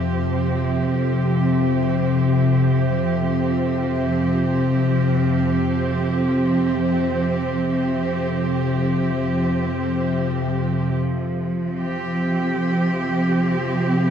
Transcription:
Already playing: synth drone F2 C3, cello section F3 C4 G4
10.91 synth drone F2 C3
10.96 cello section F3
11.67 cello section C4
11.78 cello section G4

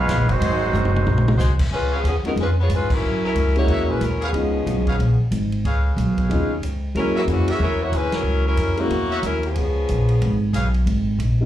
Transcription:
Already playing: trombone section G#3 B3 F4, trumpet section C#4 G#4 B4 F5
0.08 upright bass A#1, snare, hi-hat pedal, ride
0.19 upright bass G#1
0.29 upright bass F1, trombone section D#3 F#3 C4, trumpet section G#3 D#4 F#4 C5, ride
0.40 upright bass G#1, saxophone section G#3 D#4 F#4 C5, ride
0.73 upright bass F#1, hi-hat pedal, mid tom
0.85 mid tom
0.96 mid tom
1.06 upright bass A#1, mid tom
1.18 mid tom
1.28 mid tom
1.38 upright bass C2, saxophone section G#3 D#4 F#4 C5, snare, hi-hat pedal
1.59 kick, crash
1.71 upright bass C#2, saxophone section G#3 C#4 F4 B4
1.92 saxophone section F3 B3 C#4 G#4, trumpet section G#4 B4 C#5 F5
2.04 upright bass D#2, saxophone section F3 B3 C#4 G#4, hi-hat pedal, ride
2.23 saxophone section F#3 B3 D#4, upright piano G#3 B3 C#4 D#4 F4, muted upright bass stroke, ride
2.28 saxophone section A#4
2.36 upright bass F2, ride
2.40 saxophone section G#3 C#4 F4 B4
2.60 saxophone section B3 F4 G#4 C#5
2.69 upright bass G#2, hi-hat pedal, ride
2.74 saxophone section G#3 C#4 F4 B4
2.90 saxophone section F#3 C#4 E4 A#4, kick, crash
3.02 upright bass F#2
3.25 saxophone section F#3 C#4 E4 A#4
3.35 upright bass C#2, hi-hat pedal, ride
3.56 upright piano G#3 A#3 C#4 E4 F#4, saxophone section A#3 E4 F#4 C#5, ride
3.67 upright bass E2, trumpet section F#4 A#4 C#5 E5, ride
3.78 upright bass C#2
3.89 upright bass A#1, saxophone section G#3 C#4 E4 B4
4.00 upright bass D#2, saxophone section E4 A#4, hi-hat pedal, ride
4.04 saxophone section F#3 C#4
4.21 saxophone section F3 B3 C#4 G#4, trumpet section G#4 B4 C#5 F5, ride
4.33 upright bass C#2, upright piano G#3 B3 C#4 D#4 F4, ride
4.66 upright bass B1, upright piano G#3 B3 C#4 D#4 F4, hi-hat pedal, ride
4.87 trumpet section G#4 B4 C#5 F5, kick, ride
4.99 upright bass A#1, ride
5.19 muted upright bass stroke
5.31 upright bass G#1, hi-hat pedal, ride
5.52 ride
5.64 upright bass C#2, trumpet section G#4 B4 C#5 F5, ride
5.96 upright bass B1, hi-hat pedal, ride
6.18 kick, ride
6.29 upright bass D#2, upright piano G#3 B3 C#4 D#4 F4, ride
6.62 upright bass C#2, hi-hat pedal, ride
6.95 upright bass F#2, saxophone section F#3 C#4 E4 A#4, upright piano G#3 A#3 C#4 E4 F#4, ride
7.15 saxophone section E3 A#3 C#4 F#4, trumpet section F#4 A#4 C#5 E5
7.27 upright bass F2, saxophone section E3 A#3 C#4 F#4, upright piano G#3 A#3 C#4 E4 G#4, hi-hat pedal, ride
7.47 saxophone section E3 A#3 C#4 G#4, trumpet section F#4 A#4 C#5 E5, muted upright bass stroke, ride
7.59 upright bass E2, saxophone section F#3 C#4 A#4
7.63 saxophone section E4
7.82 saxophone section A#3 E4 F#4 C#5
7.92 upright bass D#2, saxophone section G#3 C#4 E4 B4, hi-hat pedal, ride
8.12 saxophone section F#3 C#4 E4 A#4, muted upright bass stroke, snare, ride
8.24 upright bass C#2
8.47 saxophone section F#3 C#4 E4 A#4
8.56 upright bass F2, hi-hat pedal, ride
8.77 upright piano G#3 A#3 C#4 E4 F#4, saxophone section A#3 E4 F#4 C#5, ride
8.90 upright bass E2, ride
9.09 trumpet section F#4 A#4 C#5 E5
9.23 upright bass D#2, saxophone section F#3 C#4 E4 A#4, hi-hat pedal, ride
9.43 saxophone section F3 B3 C#4 G#4, ride
9.56 upright bass C#2, ride
9.89 upright bass A#1, hi-hat pedal, ride
10.09 ride
10.22 upright bass G#1, ride
10.53 upright bass B1, trumpet section G#4 B4 C#5 F5, hi-hat pedal, ride
10.74 ride
10.86 upright bass G#1, ride
11.19 upright bass A#1, hi-hat pedal, ride
11.41 upright piano G#3 B3 C#4 D#4 F4

